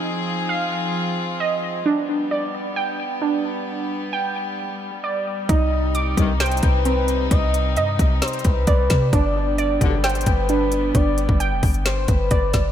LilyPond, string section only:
\new Staff \with { instrumentName = "String section" } { \time 4/4 \key g \phrygian \tempo 4 = 132 << { <f f' aes'>1 | b1~ | b1 | <c ees'>1~ |
<c ees'>1 | b1~ | b1 | } \\ { c'1 | g1~ | g1~ | g1~ |
g1 | g1~ | g1 | } >> }